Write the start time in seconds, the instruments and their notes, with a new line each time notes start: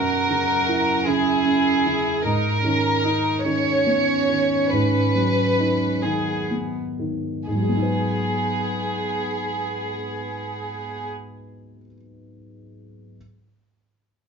Already playing: grand piano F#2, cello F#4, violin section A#4
0.29 grand piano C#3
0.68 grand piano E4
1.06 grand piano C#3, cello E4, violin section G#4
1.45 grand piano C#4
1.85 grand piano C#3
2.24 grand piano G#2, cello D#4, violin section A#4
2.64 grand piano D#3, cello C#4
3.04 cello D#4, grand piano D#4
3.44 grand piano D#3, cello C#4, violin section C#5
3.86 grand piano B3
4.29 grand piano D#3
4.71 grand piano G#2, violin section B4
5.15 grand piano F#3
5.59 grand piano D#4
6.03 grand piano D#3, cello B3, violin section G#4
6.51 grand piano B3
6.99 grand piano D#3
7.47 grand piano G#2, cello B3, violin section G#4
7.55 grand piano F#3
7.61 grand piano G#3
7.69 grand piano B3
7.76 grand piano D#4
7.82 grand piano B4